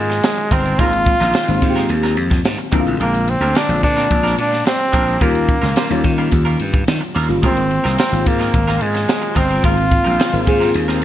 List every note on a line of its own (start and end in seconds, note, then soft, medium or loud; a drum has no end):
0.00 0.19 G#2 medium
0.00 0.79 D#3 medium
0.00 0.54 G#3 loud
0.00 0.79 G#3 medium
0.00 0.79 A#3 medium
0.00 0.80 C4 medium
0.00 0.36 D#4 medium
0.00 0.80 F4 medium
0.10 muted clean electric guitar stroke soft
0.10 snare soft
0.10 ride soft
0.23 muted clean electric guitar stroke soft
0.23 snare loud
0.23 ride medium
0.37 muted clean electric guitar stroke soft
0.37 ride soft
0.51 0.74 G1 loud
0.51 0.65 G#3 medium
0.51 0.64 C4 medium
0.51 0.81 C4 loud
0.51 0.64 F4 medium
0.51 0.63 A#4 medium
0.51 kick medium
0.51 ride medium
0.65 0.77 G#3 soft
0.65 0.77 C4 medium
0.65 0.78 F4 medium
0.65 0.78 A#4 medium
0.65 ride soft
0.78 1.14 G#1 loud
0.78 1.38 D#3 medium
0.78 0.99 G#3 medium
0.78 1.38 G#3 medium
0.78 1.39 A#3 medium
0.78 0.93 C4 loud
0.78 1.39 C4 medium
0.78 0.92 F4 loud
0.78 1.90 F4 loud
0.78 1.39 F4 medium
0.78 0.92 A#4 medium
0.78 kick loud
0.78 ride medium
0.93 muted clean electric guitar stroke soft
0.93 ride soft
1.06 muted clean electric guitar stroke soft
1.06 kick loud
1.06 ride medium
1.20 1.32 A#1 medium
1.20 1.33 G#3 medium
1.20 1.33 C4 medium
1.20 1.34 F4 medium
1.20 1.35 A#4 medium
1.20 snare soft
1.20 ride soft
1.34 1.55 G#3 medium
1.34 1.49 C4 medium
1.34 1.48 F4 medium
1.34 1.48 C5 loud
1.34 snare loud
1.34 ride medium
1.48 1.60 G#1 loud
1.48 1.60 D#3 loud
1.48 1.60 G#3 medium
1.48 1.60 A#3 medium
1.48 1.60 C4 medium
1.48 1.61 F4 loud
1.48 muted clean electric guitar stroke soft
1.48 ride medium
1.62 1.85 G#2 medium
1.62 2.57 D#3 medium
1.62 2.57 G#3 medium
1.62 2.57 A#3 medium
1.62 2.57 C4 medium
1.62 1.69 F4 medium
1.62 muted clean electric guitar stroke soft
1.62 kick medium
1.62 open hi-hat medium
1.62 ride medium
1.70 2.61 G4 loud
1.76 1.88 G#3 medium
1.76 1.89 C4 medium
1.76 1.89 F4 medium
1.76 1.89 A#4 medium
1.76 snare soft
1.76 ride soft
1.89 2.17 D#2 loud
1.89 muted clean electric guitar stroke medium
1.89 hi-hat pedal medium
1.89 ride medium
2.03 2.16 G#3 medium
2.03 2.16 C4 medium
2.03 2.16 F4 medium
2.03 2.17 A#4 medium
2.03 snare soft
2.03 ride soft
2.17 2.40 F2 medium
2.17 muted clean electric guitar stroke soft
2.17 ride medium
2.30 muted clean electric guitar stroke medium
2.30 kick medium
2.30 snare soft
2.30 ride soft
2.45 2.56 G#2 loud
2.45 snare loud
2.45 ride medium
2.58 muted clean electric guitar stroke soft
2.58 ride soft
2.72 2.84 A#1 loud
2.72 3.56 D3 loud
2.72 2.93 G#3 medium
2.72 3.56 G#3 medium
2.72 3.56 A#3 medium
2.72 2.86 C4 loud
2.72 3.56 C4 medium
2.72 2.86 D4 medium
2.72 2.79 E4 medium
2.72 2.85 A#4 loud
2.72 kick loud
2.72 ride medium
2.80 3.59 F4 loud
2.86 2.98 A1 medium
2.86 muted clean electric guitar stroke soft
2.86 ride soft
3.00 3.35 A#1 loud
3.00 3.21 G#3 medium
3.00 3.31 A#3 loud
3.00 3.14 C4 medium
3.00 3.13 D4 medium
3.00 3.13 A#4 medium
3.00 ride medium
3.14 muted clean electric guitar stroke soft
3.14 ride soft
3.28 3.58 C4 loud
3.28 muted clean electric guitar stroke soft
3.28 ride medium
3.40 3.53 D2 medium
3.40 3.54 G#3 medium
3.40 3.54 C4 medium
3.40 3.54 D4 medium
3.40 3.55 A#4 medium
3.40 ride soft
3.55 3.76 G#3 medium
3.55 3.68 C4 medium
3.55 3.68 D4 loud
3.55 3.83 D4 loud
3.55 3.68 A#4 medium
3.55 snare loud
3.55 ride medium
3.69 3.81 A#1 loud
3.69 3.81 D3 medium
3.69 3.81 G#3 medium
3.69 3.81 A#3 medium
3.69 3.81 C4 medium
3.69 3.82 F4 medium
3.69 muted clean electric guitar stroke soft
3.69 ride medium
3.82 4.06 A#2 loud
3.82 4.78 D3 medium
3.82 4.78 G#3 medium
3.82 4.79 A#3 medium
3.82 4.79 C4 medium
3.82 4.35 D4 loud
3.82 4.79 F4 medium
3.82 muted clean electric guitar stroke soft
3.82 kick medium
3.82 open hi-hat medium
3.82 ride medium
3.96 4.09 G#3 soft
3.96 4.09 C4 medium
3.96 4.09 D4 medium
3.96 4.10 A#4 medium
3.96 snare soft
3.96 ride soft
4.10 4.34 A#1 loud
4.10 muted clean electric guitar stroke soft
4.10 kick medium
4.10 hi-hat pedal medium
4.10 ride medium
4.23 4.36 G#3 medium
4.23 4.36 C4 medium
4.23 4.37 D4 medium
4.23 4.37 A#4 medium
4.23 snare soft
4.23 ride soft
4.37 4.61 A#2 medium
4.37 4.65 D4 loud
4.37 muted clean electric guitar stroke soft
4.37 ride medium
4.51 muted clean electric guitar stroke soft
4.51 snare soft
4.51 ride soft
4.65 5.24 C4 loud
4.65 muted clean electric guitar stroke soft
4.65 snare loud
4.65 ride medium
4.79 muted clean electric guitar stroke soft
4.79 ride soft
4.92 5.17 A#1 medium
4.92 5.06 G#3 medium
4.92 5.06 C4 medium
4.92 5.05 D4 medium
4.92 5.05 A#4 medium
4.92 kick medium
4.92 ride medium
5.06 5.20 G#3 medium
5.06 5.20 C4 medium
5.06 5.21 D4 medium
5.06 5.20 A#4 medium
5.06 ride soft
5.20 5.56 D#2 loud
5.20 5.81 D#3 medium
5.20 5.42 G3 loud
5.20 5.81 G3 medium
5.20 5.81 A#3 medium
5.20 6.33 A#3 medium
5.20 5.34 C#4 medium
5.20 5.81 C#4 medium
5.20 5.33 F4 loud
5.20 5.81 F4 medium
5.20 5.33 A#4 loud
5.20 kick loud
5.20 ride medium
5.34 muted clean electric guitar stroke soft
5.34 ride soft
5.48 muted clean electric guitar stroke soft
5.48 kick loud
5.48 ride soft
5.62 5.74 C#2 medium
5.62 5.75 G3 soft
5.62 5.75 C#4 medium
5.62 5.75 F4 medium
5.62 5.76 A#4 medium
5.62 snare soft
5.62 ride soft
5.76 5.97 G3 medium
5.76 5.90 C#4 medium
5.76 5.90 F4 loud
5.76 5.90 C5 loud
5.76 snare loud
5.76 ride medium
5.90 6.02 D#2 loud
5.90 6.02 D#3 medium
5.90 6.03 G3 medium
5.90 6.03 A#3 medium
5.90 6.03 C#4 medium
5.90 6.03 F4 loud
5.90 muted clean electric guitar stroke soft
5.90 ride medium
6.04 6.99 D#3 medium
6.04 6.28 D#3 loud
6.04 6.99 G3 medium
6.04 7.00 A#3 medium
6.04 7.00 C#4 medium
6.04 7.00 F4 loud
6.04 muted clean electric guitar stroke soft
6.04 kick medium
6.04 open hi-hat medium
6.04 ride medium
6.18 6.30 G3 medium
6.18 6.31 C#4 medium
6.18 6.31 F4 medium
6.18 6.32 A#4 medium
6.18 ride soft
6.31 6.55 D#2 medium
6.31 muted clean electric guitar stroke soft
6.31 kick medium
6.31 hi-hat pedal medium
6.31 ride medium
6.45 6.58 G3 medium
6.45 6.58 C#4 medium
6.45 6.58 F4 medium
6.45 6.59 A#4 medium
6.45 ride soft
6.59 6.83 G2 loud
6.59 muted clean electric guitar stroke soft
6.59 ride medium
6.73 muted clean electric guitar stroke soft
6.73 kick loud
6.73 ride soft
6.88 6.99 D#3 loud
6.88 snare loud
6.88 ride medium
7.01 muted clean electric guitar stroke medium
7.01 ride soft
7.15 7.27 D#2 medium
7.15 7.36 G3 medium
7.15 7.29 C#4 medium
7.15 7.29 F4 medium
7.15 7.28 A#4 medium
7.15 open hi-hat medium
7.15 ride medium
7.28 7.41 G1 medium
7.28 7.41 D#3 medium
7.28 7.41 G3 medium
7.28 7.41 A#3 medium
7.28 7.41 C#4 medium
7.28 7.41 F4 medium
7.28 muted clean electric guitar stroke soft
7.28 ride soft
7.42 7.78 G#1 loud
7.42 8.02 D#3 medium
7.42 7.64 G#3 medium
7.42 8.02 G#3 medium
7.42 8.02 A#3 medium
7.42 7.57 C4 medium
7.42 8.03 C4 medium
7.42 7.96 C4 medium
7.42 11.05 F4 medium
7.42 7.56 F4 medium
7.42 8.03 F4 medium
7.42 11.05 A#4 medium
7.42 7.56 A#4 loud
7.42 11.05 C5 medium
7.42 11.05 G#5 medium
7.42 kick loud
7.42 hi-hat pedal medium
7.42 ride medium
7.57 muted clean electric guitar stroke soft
7.57 ride soft
7.70 muted clean electric guitar stroke soft
7.70 ride medium
7.84 7.96 C2 loud
7.84 7.96 G#3 medium
7.84 7.97 C4 medium
7.84 7.97 F4 medium
7.84 7.98 A#4 medium
7.84 snare soft
7.84 ride soft
7.97 8.19 G#3 medium
7.97 8.11 C4 medium
7.97 8.29 C4 loud
7.97 8.11 F4 medium
7.97 8.11 A#4 loud
7.97 snare loud
7.97 ride medium
8.12 8.24 G#1 loud
8.12 8.24 D#3 medium
8.12 8.24 G#3 medium
8.12 8.24 A#3 medium
8.12 8.24 C4 medium
8.12 8.24 F4 medium
8.12 muted clean electric guitar stroke soft
8.12 ride medium
8.25 8.49 G#2 medium
8.25 9.21 D#3 medium
8.25 9.21 G#3 medium
8.25 9.21 A#3 medium
8.25 8.83 A#3 loud
8.25 9.21 C4 medium
8.25 9.21 F4 medium
8.25 muted clean electric guitar stroke soft
8.25 kick medium
8.25 open hi-hat medium
8.25 ride medium
8.39 8.52 G#3 medium
8.39 8.53 C4 medium
8.39 8.53 F4 medium
8.39 8.54 A#4 medium
8.39 snare soft
8.39 ride soft
8.54 8.77 G#1 loud
8.54 muted clean electric guitar stroke soft
8.54 kick medium
8.54 hi-hat pedal medium
8.54 ride medium
8.68 8.79 G#3 medium
8.68 8.80 C4 medium
8.68 8.80 F4 medium
8.68 8.81 A#4 medium
8.68 snare soft
8.68 ride soft
8.81 9.05 G#2 loud
8.81 9.39 G#3 medium
8.81 muted clean electric guitar stroke soft
8.81 ride medium
8.94 muted clean electric guitar stroke soft
8.94 snare soft
8.94 ride soft
9.08 muted clean electric guitar stroke soft
9.08 snare loud
9.08 ride medium
9.22 muted clean electric guitar stroke medium
9.22 ride soft
9.35 9.59 G1 loud
9.35 9.49 G#3 medium
9.35 9.49 C4 medium
9.35 9.64 C4 loud
9.35 9.49 F4 medium
9.35 9.48 A#4 medium
9.35 kick medium
9.35 ride medium
9.49 9.62 G#3 medium
9.49 9.62 C4 soft
9.49 9.62 F4 medium
9.49 9.63 A#4 medium
9.49 ride soft
9.63 9.99 G#1 loud
9.63 10.23 D#3 medium
9.63 9.84 G#3 medium
9.63 10.23 G#3 medium
9.63 10.24 A#3 medium
9.63 9.77 C4 medium
9.63 10.24 C4 medium
9.63 9.76 F4 medium
9.63 10.24 F4 medium
9.63 10.71 F4 loud
9.63 9.76 A#4 loud
9.63 kick loud
9.63 ride medium
9.77 muted clean electric guitar stroke soft
9.77 ride medium
9.91 muted clean electric guitar stroke soft
9.91 kick loud
9.91 ride medium
10.04 10.18 A#1 medium
10.04 10.18 G#3 soft
10.04 10.18 C4 medium
10.04 10.18 F4 medium
10.04 10.19 A#4 medium
10.04 ride soft
10.19 10.40 G#3 medium
10.19 10.32 C4 medium
10.19 10.32 F4 medium
10.19 10.32 C5 medium
10.19 snare loud
10.19 ride medium
10.33 10.45 G#1 loud
10.33 10.45 D#3 medium
10.33 10.45 G#3 medium
10.33 10.45 A#3 medium
10.33 10.45 C4 medium
10.33 10.45 F4 loud
10.33 muted clean electric guitar stroke soft
10.33 ride medium
10.46 10.71 G#2 loud
10.46 11.05 D#3 medium
10.46 11.05 G#3 medium
10.46 11.05 A#3 medium
10.46 11.05 C4 medium
10.46 11.05 G#4 loud
10.46 muted clean electric guitar stroke soft
10.46 kick medium
10.46 open hi-hat medium
10.46 ride medium
10.60 10.73 G#3 medium
10.60 10.73 C4 medium
10.60 10.73 F4 medium
10.60 10.74 A#4 medium
10.60 snare soft
10.60 ride soft
10.74 11.03 D#2 loud
10.74 muted clean electric guitar stroke soft
10.74 hi-hat pedal medium
10.74 ride medium
10.88 11.01 G#3 medium
10.88 11.01 C4 medium
10.88 11.01 F4 medium
10.88 11.02 A#4 medium
10.88 snare soft
10.88 ride soft